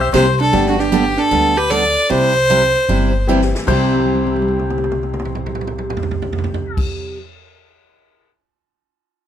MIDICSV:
0, 0, Header, 1, 8, 480
1, 0, Start_track
1, 0, Key_signature, 0, "major"
1, 0, Tempo, 394997
1, 632, Time_signature, 4, 2, 24, 8
1, 11269, End_track
2, 0, Start_track
2, 0, Title_t, "Pedal steel guitar"
2, 0, Program_c, 0, 26
2, 3, Note_on_c, 0, 67, 68
2, 15, Note_on_c, 0, 76, 82
2, 148, Note_off_c, 0, 67, 0
2, 159, Note_on_c, 0, 72, 99
2, 161, Note_off_c, 0, 76, 0
2, 463, Note_off_c, 0, 72, 0
2, 4472, Note_on_c, 0, 72, 94
2, 8246, Note_off_c, 0, 72, 0
2, 11269, End_track
3, 0, Start_track
3, 0, Title_t, "Fiddle"
3, 0, Program_c, 1, 110
3, 175, Note_on_c, 1, 72, 88
3, 459, Note_off_c, 1, 72, 0
3, 496, Note_on_c, 1, 69, 79
3, 825, Note_off_c, 1, 69, 0
3, 839, Note_on_c, 1, 66, 67
3, 965, Note_on_c, 1, 67, 88
3, 984, Note_off_c, 1, 66, 0
3, 1444, Note_on_c, 1, 69, 92
3, 1462, Note_off_c, 1, 67, 0
3, 1913, Note_on_c, 1, 71, 103
3, 1931, Note_off_c, 1, 69, 0
3, 2073, Note_on_c, 1, 74, 101
3, 2091, Note_off_c, 1, 71, 0
3, 2550, Note_on_c, 1, 72, 117
3, 2568, Note_off_c, 1, 74, 0
3, 3988, Note_off_c, 1, 72, 0
3, 11269, End_track
4, 0, Start_track
4, 0, Title_t, "Hollow-body jazz guitar"
4, 0, Program_c, 2, 26
4, 187, Note_on_c, 2, 67, 71
4, 465, Note_off_c, 2, 67, 0
4, 494, Note_on_c, 2, 62, 74
4, 824, Note_off_c, 2, 62, 0
4, 845, Note_on_c, 2, 62, 58
4, 946, Note_off_c, 2, 62, 0
4, 971, Note_on_c, 2, 62, 64
4, 1414, Note_off_c, 2, 62, 0
4, 1429, Note_on_c, 2, 62, 69
4, 1911, Note_off_c, 2, 62, 0
4, 1911, Note_on_c, 2, 67, 83
4, 2070, Note_off_c, 2, 67, 0
4, 2070, Note_on_c, 2, 69, 83
4, 2551, Note_off_c, 2, 69, 0
4, 2551, Note_on_c, 2, 67, 73
4, 3989, Note_off_c, 2, 67, 0
4, 11269, End_track
5, 0, Start_track
5, 0, Title_t, "Steel-string acoustic guitar"
5, 0, Program_c, 3, 25
5, 165, Note_on_c, 3, 48, 73
5, 165, Note_on_c, 3, 55, 82
5, 170, Note_on_c, 3, 60, 73
5, 171, Note_on_c, 3, 64, 75
5, 175, Note_on_c, 3, 67, 80
5, 303, Note_off_c, 3, 48, 0
5, 304, Note_off_c, 3, 55, 0
5, 306, Note_off_c, 3, 60, 0
5, 307, Note_off_c, 3, 64, 0
5, 308, Note_off_c, 3, 67, 0
5, 644, Note_on_c, 3, 55, 58
5, 647, Note_on_c, 3, 59, 56
5, 651, Note_on_c, 3, 62, 62
5, 652, Note_on_c, 3, 69, 62
5, 910, Note_off_c, 3, 55, 0
5, 912, Note_off_c, 3, 59, 0
5, 914, Note_off_c, 3, 62, 0
5, 915, Note_off_c, 3, 69, 0
5, 1116, Note_on_c, 3, 55, 69
5, 1123, Note_on_c, 3, 59, 75
5, 1128, Note_on_c, 3, 62, 80
5, 1129, Note_on_c, 3, 69, 83
5, 1258, Note_off_c, 3, 55, 0
5, 1261, Note_off_c, 3, 59, 0
5, 1264, Note_off_c, 3, 62, 0
5, 1264, Note_off_c, 3, 69, 0
5, 1597, Note_on_c, 3, 55, 59
5, 1602, Note_on_c, 3, 59, 64
5, 1606, Note_on_c, 3, 62, 62
5, 1610, Note_on_c, 3, 69, 58
5, 1866, Note_off_c, 3, 55, 0
5, 1868, Note_off_c, 3, 59, 0
5, 1871, Note_off_c, 3, 62, 0
5, 1872, Note_off_c, 3, 69, 0
5, 2076, Note_on_c, 3, 55, 70
5, 2079, Note_on_c, 3, 59, 85
5, 2085, Note_on_c, 3, 62, 85
5, 2086, Note_on_c, 3, 69, 77
5, 2217, Note_off_c, 3, 55, 0
5, 2218, Note_off_c, 3, 59, 0
5, 2221, Note_off_c, 3, 62, 0
5, 2222, Note_off_c, 3, 69, 0
5, 2547, Note_on_c, 3, 48, 58
5, 2552, Note_on_c, 3, 55, 56
5, 2556, Note_on_c, 3, 60, 55
5, 2556, Note_on_c, 3, 64, 63
5, 2561, Note_on_c, 3, 67, 57
5, 2821, Note_off_c, 3, 48, 0
5, 2823, Note_off_c, 3, 55, 0
5, 2825, Note_off_c, 3, 60, 0
5, 2825, Note_off_c, 3, 64, 0
5, 2827, Note_off_c, 3, 67, 0
5, 3035, Note_on_c, 3, 48, 81
5, 3038, Note_on_c, 3, 55, 78
5, 3043, Note_on_c, 3, 60, 70
5, 3044, Note_on_c, 3, 64, 84
5, 3046, Note_on_c, 3, 67, 81
5, 3176, Note_off_c, 3, 48, 0
5, 3177, Note_off_c, 3, 55, 0
5, 3180, Note_off_c, 3, 60, 0
5, 3181, Note_off_c, 3, 64, 0
5, 3182, Note_off_c, 3, 67, 0
5, 3510, Note_on_c, 3, 48, 57
5, 3515, Note_on_c, 3, 55, 54
5, 3520, Note_on_c, 3, 60, 54
5, 3524, Note_on_c, 3, 64, 59
5, 3526, Note_on_c, 3, 67, 59
5, 3782, Note_off_c, 3, 48, 0
5, 3784, Note_off_c, 3, 55, 0
5, 3787, Note_off_c, 3, 60, 0
5, 3789, Note_off_c, 3, 64, 0
5, 3789, Note_off_c, 3, 67, 0
5, 3992, Note_on_c, 3, 48, 72
5, 3994, Note_on_c, 3, 55, 71
5, 3997, Note_on_c, 3, 60, 80
5, 4001, Note_on_c, 3, 64, 81
5, 4005, Note_on_c, 3, 67, 79
5, 4134, Note_off_c, 3, 48, 0
5, 4136, Note_off_c, 3, 55, 0
5, 4137, Note_off_c, 3, 60, 0
5, 4139, Note_off_c, 3, 64, 0
5, 4141, Note_off_c, 3, 67, 0
5, 4460, Note_on_c, 3, 48, 60
5, 4474, Note_on_c, 3, 55, 73
5, 4481, Note_on_c, 3, 60, 70
5, 4485, Note_on_c, 3, 64, 74
5, 4498, Note_on_c, 3, 67, 77
5, 8713, Note_off_c, 3, 48, 0
5, 8727, Note_off_c, 3, 55, 0
5, 8734, Note_off_c, 3, 60, 0
5, 8738, Note_off_c, 3, 64, 0
5, 8751, Note_off_c, 3, 67, 0
5, 11269, End_track
6, 0, Start_track
6, 0, Title_t, "Honky-tonk piano"
6, 0, Program_c, 4, 3
6, 635, Note_on_c, 4, 55, 66
6, 639, Note_on_c, 4, 57, 56
6, 641, Note_on_c, 4, 59, 53
6, 647, Note_on_c, 4, 62, 60
6, 649, Note_on_c, 4, 67, 75
6, 1973, Note_off_c, 4, 55, 0
6, 1975, Note_off_c, 4, 57, 0
6, 1976, Note_off_c, 4, 59, 0
6, 1979, Note_off_c, 4, 62, 0
6, 1980, Note_off_c, 4, 67, 0
6, 3977, Note_on_c, 4, 52, 67
6, 3977, Note_on_c, 4, 55, 58
6, 3983, Note_on_c, 4, 60, 54
6, 3989, Note_on_c, 4, 64, 58
6, 3992, Note_on_c, 4, 67, 67
6, 4450, Note_off_c, 4, 55, 0
6, 4453, Note_on_c, 4, 36, 59
6, 4461, Note_off_c, 4, 64, 0
6, 4462, Note_off_c, 4, 52, 0
6, 4465, Note_off_c, 4, 60, 0
6, 4465, Note_on_c, 4, 48, 58
6, 4469, Note_on_c, 4, 55, 63
6, 4470, Note_off_c, 4, 67, 0
6, 4480, Note_on_c, 4, 64, 59
6, 4491, Note_on_c, 4, 67, 73
6, 8285, Note_off_c, 4, 36, 0
6, 8291, Note_off_c, 4, 48, 0
6, 8293, Note_off_c, 4, 55, 0
6, 8299, Note_off_c, 4, 64, 0
6, 8304, Note_off_c, 4, 67, 0
6, 11269, End_track
7, 0, Start_track
7, 0, Title_t, "Upright bass"
7, 0, Program_c, 5, 32
7, 0, Note_on_c, 5, 35, 87
7, 143, Note_off_c, 5, 35, 0
7, 162, Note_on_c, 5, 36, 90
7, 622, Note_off_c, 5, 36, 0
7, 640, Note_on_c, 5, 31, 90
7, 1403, Note_off_c, 5, 31, 0
7, 1596, Note_on_c, 5, 38, 72
7, 2361, Note_off_c, 5, 38, 0
7, 2555, Note_on_c, 5, 36, 77
7, 3320, Note_off_c, 5, 36, 0
7, 3508, Note_on_c, 5, 31, 82
7, 4276, Note_off_c, 5, 31, 0
7, 4467, Note_on_c, 5, 36, 91
7, 8244, Note_off_c, 5, 36, 0
7, 11269, End_track
8, 0, Start_track
8, 0, Title_t, "Drums"
8, 165, Note_on_c, 9, 38, 72
8, 165, Note_on_c, 9, 44, 53
8, 165, Note_on_c, 9, 51, 73
8, 286, Note_off_c, 9, 38, 0
8, 286, Note_off_c, 9, 44, 0
8, 286, Note_off_c, 9, 51, 0
8, 482, Note_on_c, 9, 51, 47
8, 603, Note_off_c, 9, 51, 0
8, 644, Note_on_c, 9, 51, 59
8, 766, Note_off_c, 9, 51, 0
8, 805, Note_on_c, 9, 38, 31
8, 927, Note_off_c, 9, 38, 0
8, 962, Note_on_c, 9, 38, 44
8, 1083, Note_off_c, 9, 38, 0
8, 1118, Note_on_c, 9, 44, 63
8, 1118, Note_on_c, 9, 51, 68
8, 1240, Note_off_c, 9, 44, 0
8, 1240, Note_off_c, 9, 51, 0
8, 1434, Note_on_c, 9, 51, 46
8, 1556, Note_off_c, 9, 51, 0
8, 1593, Note_on_c, 9, 51, 62
8, 1714, Note_off_c, 9, 51, 0
8, 2074, Note_on_c, 9, 44, 64
8, 2074, Note_on_c, 9, 51, 74
8, 2195, Note_off_c, 9, 44, 0
8, 2195, Note_off_c, 9, 51, 0
8, 2392, Note_on_c, 9, 51, 46
8, 2513, Note_off_c, 9, 51, 0
8, 2553, Note_on_c, 9, 51, 59
8, 2674, Note_off_c, 9, 51, 0
8, 3037, Note_on_c, 9, 44, 57
8, 3037, Note_on_c, 9, 51, 68
8, 3158, Note_off_c, 9, 44, 0
8, 3158, Note_off_c, 9, 51, 0
8, 3349, Note_on_c, 9, 51, 44
8, 3470, Note_off_c, 9, 51, 0
8, 3512, Note_on_c, 9, 51, 59
8, 3633, Note_off_c, 9, 51, 0
8, 3990, Note_on_c, 9, 44, 55
8, 4112, Note_off_c, 9, 44, 0
8, 4148, Note_on_c, 9, 38, 48
8, 4269, Note_off_c, 9, 38, 0
8, 4311, Note_on_c, 9, 38, 70
8, 4432, Note_off_c, 9, 38, 0
8, 4469, Note_on_c, 9, 36, 100
8, 4471, Note_on_c, 9, 49, 87
8, 4591, Note_off_c, 9, 36, 0
8, 4593, Note_off_c, 9, 49, 0
8, 4794, Note_on_c, 9, 48, 45
8, 4860, Note_off_c, 9, 48, 0
8, 4860, Note_on_c, 9, 48, 46
8, 4929, Note_off_c, 9, 48, 0
8, 4929, Note_on_c, 9, 48, 49
8, 5043, Note_off_c, 9, 48, 0
8, 5043, Note_on_c, 9, 48, 47
8, 5165, Note_off_c, 9, 48, 0
8, 5183, Note_on_c, 9, 48, 54
8, 5300, Note_off_c, 9, 48, 0
8, 5300, Note_on_c, 9, 48, 47
8, 5370, Note_off_c, 9, 48, 0
8, 5370, Note_on_c, 9, 48, 52
8, 5445, Note_off_c, 9, 48, 0
8, 5445, Note_on_c, 9, 48, 49
8, 5566, Note_off_c, 9, 48, 0
8, 5582, Note_on_c, 9, 47, 47
8, 5703, Note_off_c, 9, 47, 0
8, 5714, Note_on_c, 9, 47, 61
8, 5806, Note_off_c, 9, 47, 0
8, 5806, Note_on_c, 9, 47, 57
8, 5879, Note_off_c, 9, 47, 0
8, 5879, Note_on_c, 9, 47, 58
8, 5974, Note_off_c, 9, 47, 0
8, 5974, Note_on_c, 9, 47, 63
8, 6095, Note_off_c, 9, 47, 0
8, 6112, Note_on_c, 9, 47, 47
8, 6234, Note_off_c, 9, 47, 0
8, 6240, Note_on_c, 9, 47, 63
8, 6313, Note_off_c, 9, 47, 0
8, 6313, Note_on_c, 9, 47, 63
8, 6382, Note_on_c, 9, 45, 65
8, 6434, Note_off_c, 9, 47, 0
8, 6503, Note_off_c, 9, 45, 0
8, 6503, Note_on_c, 9, 45, 71
8, 6624, Note_off_c, 9, 45, 0
8, 6638, Note_on_c, 9, 45, 70
8, 6744, Note_off_c, 9, 45, 0
8, 6744, Note_on_c, 9, 45, 65
8, 6818, Note_off_c, 9, 45, 0
8, 6818, Note_on_c, 9, 45, 67
8, 6894, Note_off_c, 9, 45, 0
8, 6894, Note_on_c, 9, 45, 74
8, 7016, Note_off_c, 9, 45, 0
8, 7029, Note_on_c, 9, 45, 67
8, 7151, Note_off_c, 9, 45, 0
8, 7169, Note_on_c, 9, 45, 80
8, 7252, Note_on_c, 9, 43, 86
8, 7290, Note_off_c, 9, 45, 0
8, 7324, Note_off_c, 9, 43, 0
8, 7324, Note_on_c, 9, 43, 84
8, 7425, Note_off_c, 9, 43, 0
8, 7425, Note_on_c, 9, 43, 82
8, 7547, Note_off_c, 9, 43, 0
8, 7560, Note_on_c, 9, 43, 84
8, 7681, Note_off_c, 9, 43, 0
8, 7687, Note_on_c, 9, 43, 83
8, 7757, Note_off_c, 9, 43, 0
8, 7757, Note_on_c, 9, 43, 79
8, 7824, Note_off_c, 9, 43, 0
8, 7824, Note_on_c, 9, 43, 91
8, 7946, Note_off_c, 9, 43, 0
8, 7948, Note_on_c, 9, 43, 85
8, 8070, Note_off_c, 9, 43, 0
8, 8231, Note_on_c, 9, 36, 115
8, 8233, Note_on_c, 9, 49, 92
8, 8352, Note_off_c, 9, 36, 0
8, 8354, Note_off_c, 9, 49, 0
8, 11269, End_track
0, 0, End_of_file